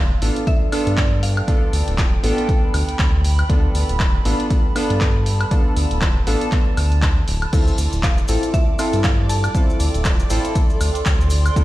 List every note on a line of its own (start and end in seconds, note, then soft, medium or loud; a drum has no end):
0.00 0.16 D1 medium
0.00 0.19 B3 medium
0.00 0.19 D4 medium
0.00 0.11 F4 medium
0.00 0.19 F4 medium
0.00 0.20 A4 medium
0.00 0.49 F5 loud
0.22 0.31 A1 loud
0.22 0.70 B3 medium
0.22 0.70 D4 medium
0.22 0.70 F4 medium
0.22 0.70 A4 medium
0.22 open hi-hat loud
0.36 closed hi-hat soft
0.47 0.99 E5 loud
0.47 kick loud
0.47 closed hi-hat medium
0.52 4.19 G5 medium
0.72 1.45 B3 loud
0.72 1.45 D4 medium
0.72 1.45 F4 medium
0.72 1.46 A4 loud
0.72 open hi-hat loud
0.72 high woodblock medium
0.87 1.42 G2 loud
0.87 closed hi-hat medium
0.97 1.24 D5 loud
0.97 kick loud
0.97 clap loud
0.97 closed hi-hat medium
1.21 2.20 F5 loud
1.21 7.53 B5 medium
1.21 open hi-hat medium
1.37 closed hi-hat soft
1.37 high woodblock medium
1.47 2.21 B3 medium
1.47 2.21 D4 medium
1.47 2.21 F4 medium
1.47 2.21 A4 medium
1.47 kick loud
1.47 closed hi-hat medium
1.73 1.82 D2 medium
1.73 open hi-hat loud
1.88 2.17 D1 medium
1.88 closed hi-hat soft
1.98 kick loud
1.98 clap loud
1.98 closed hi-hat medium
2.23 2.33 A1 medium
2.23 3.47 B3 loud
2.23 3.47 D4 medium
2.23 3.47 F4 medium
2.23 3.47 A4 loud
2.23 open hi-hat medium
2.38 closed hi-hat medium
2.49 kick loud
2.49 closed hi-hat medium
2.74 2.83 D2 loud
2.74 open hi-hat loud
2.74 high woodblock medium
2.89 closed hi-hat medium
2.99 3.43 D2 loud
2.99 kick loud
2.99 clap loud
2.99 closed hi-hat medium
3.24 open hi-hat medium
3.39 closed hi-hat soft
3.39 high woodblock medium
3.49 3.67 D2 loud
3.49 4.22 B3 medium
3.49 4.23 D4 medium
3.49 4.23 F4 medium
3.49 4.23 A4 medium
3.49 kick loud
3.49 closed hi-hat medium
3.75 3.84 D2 medium
3.75 open hi-hat loud
3.89 4.19 D1 medium
3.89 closed hi-hat medium
4.00 8.95 A5 medium
4.00 kick loud
4.00 clap loud
4.00 closed hi-hat medium
4.25 4.34 A1 medium
4.25 4.73 B3 medium
4.25 4.73 D4 medium
4.25 4.73 F4 medium
4.25 4.73 A4 medium
4.25 open hi-hat medium
4.40 closed hi-hat medium
4.50 kick loud
4.50 closed hi-hat medium
4.75 5.48 B3 loud
4.75 5.49 D4 medium
4.75 5.49 F4 medium
4.75 5.49 A4 loud
4.75 open hi-hat loud
4.75 high woodblock medium
4.90 5.45 G2 loud
4.90 closed hi-hat medium
5.01 kick loud
5.01 clap loud
5.01 closed hi-hat medium
5.26 open hi-hat medium
5.41 closed hi-hat medium
5.41 high woodblock medium
5.51 6.24 B3 medium
5.51 6.24 D4 medium
5.51 6.24 F4 medium
5.51 6.25 A4 medium
5.51 kick loud
5.51 closed hi-hat medium
5.77 5.86 D2 medium
5.77 open hi-hat loud
5.91 6.21 D1 medium
5.91 closed hi-hat medium
6.01 kick loud
6.01 clap loud
6.01 closed hi-hat medium
6.26 6.36 A1 loud
6.26 7.50 B3 loud
6.26 7.50 D4 medium
6.26 7.50 F4 medium
6.26 7.51 A4 loud
6.26 open hi-hat medium
6.41 closed hi-hat medium
6.52 kick loud
6.52 clap medium
6.52 closed hi-hat medium
6.77 7.22 D2 medium
6.77 open hi-hat loud
6.77 high woodblock medium
6.92 closed hi-hat medium
7.02 kick loud
7.02 clap loud
7.02 closed hi-hat medium
7.28 7.45 D1 loud
7.28 open hi-hat medium
7.42 closed hi-hat medium
7.42 high woodblock medium
7.53 7.70 D2 loud
7.53 8.26 C4 medium
7.53 8.26 E4 medium
7.53 8.26 F4 medium
7.53 11.64 A4 medium
7.53 8.26 A4 medium
7.53 11.64 D5 medium
7.53 kick loud
7.53 closed hi-hat medium
7.53 crash medium
7.53 cabasa medium
7.67 cabasa soft
7.78 7.87 D2 medium
7.78 open hi-hat loud
7.78 cabasa loud
7.92 8.22 D1 medium
7.92 11.64 D5 medium
7.92 closed hi-hat medium
7.92 cabasa soft
8.03 8.55 F5 loud
8.03 kick loud
8.03 clap loud
8.03 closed hi-hat medium
8.03 cabasa medium
8.18 cabasa soft
8.28 8.38 A1 medium
8.28 8.76 C4 medium
8.28 8.76 E4 medium
8.28 8.77 F4 medium
8.28 8.77 A4 medium
8.28 open hi-hat medium
8.28 cabasa medium
8.43 11.64 G5 medium
8.43 closed hi-hat medium
8.43 cabasa soft
8.54 9.06 E5 loud
8.54 kick loud
8.54 closed hi-hat medium
8.54 cabasa medium
8.79 9.52 C4 loud
8.79 9.52 E4 medium
8.79 9.52 F4 medium
8.79 9.52 A4 loud
8.79 open hi-hat loud
8.79 cabasa medium
8.79 high woodblock medium
8.93 9.48 G2 loud
8.93 closed hi-hat medium
8.93 cabasa soft
9.04 9.30 F5 loud
9.04 kick loud
9.04 clap loud
9.04 closed hi-hat medium
9.04 cabasa medium
9.29 10.77 A5 loud
9.29 open hi-hat loud
9.29 cabasa medium
9.38 11.64 C6 loud
9.44 closed hi-hat medium
9.44 cabasa soft
9.44 high woodblock medium
9.54 10.28 C4 medium
9.54 10.28 E4 medium
9.54 10.28 F4 medium
9.54 10.28 A4 medium
9.54 kick loud
9.54 closed hi-hat medium
9.54 cabasa medium
9.70 cabasa soft
9.80 9.89 D2 medium
9.80 open hi-hat loud
9.80 cabasa medium
9.94 10.24 D1 medium
9.94 closed hi-hat medium
9.94 cabasa soft
10.05 kick loud
10.05 clap loud
10.05 closed hi-hat medium
10.05 cabasa medium
10.19 cabasa soft
10.30 10.40 A1 loud
10.30 11.54 C4 loud
10.30 11.54 E4 medium
10.30 11.54 F4 medium
10.30 11.54 A4 loud
10.30 open hi-hat loud
10.30 cabasa loud
10.45 closed hi-hat medium
10.45 cabasa soft
10.55 kick loud
10.55 closed hi-hat medium
10.55 cabasa medium
10.70 cabasa soft
10.81 10.90 D2 loud
10.81 open hi-hat loud
10.81 cabasa loud
10.81 high woodblock medium
10.95 closed hi-hat medium
10.95 cabasa soft
11.06 11.50 D2 medium
11.06 kick loud
11.06 clap loud
11.06 closed hi-hat medium
11.06 cabasa medium
11.21 cabasa soft
11.30 open hi-hat medium
11.30 cabasa medium
11.46 closed hi-hat medium
11.46 cabasa soft
11.46 high woodblock medium
11.56 11.64 D2 loud
11.56 11.64 C4 medium
11.56 11.64 E4 medium
11.56 11.64 F4 medium
11.56 11.64 A4 medium
11.56 kick loud
11.56 closed hi-hat medium
11.56 cabasa medium